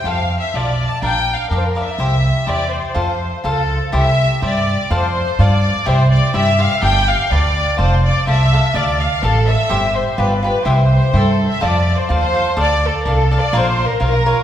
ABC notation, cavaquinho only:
X:1
M:2/4
L:1/8
Q:1/4=125
K:F
V:1 name="Cavaquinho"
[FAcf] z [FAcf] z | [DBdf] z [DBdf] [DBdf] | [EGce] z [EGce] z | [FAcf] z [FAcf] z |
[K:C] [EGce] z [EGce] z | [FAcf] z [FAcf] z | [EGce] z [EGce] [EGce] | [DGBd] z [DGBd] z |
[FAcf] z [FAcf] [FAcf] | [DAdf] z [DAdf] z | [EGce] z [FGBd] [FGBd] | [EGce] z [EGce] z |
[K:F] [FAcf] z [FAcf] [FAcf] | [DAdf] z [DAdf] [DAdf] | [FB_df] z [FBdf] [FBdf] |]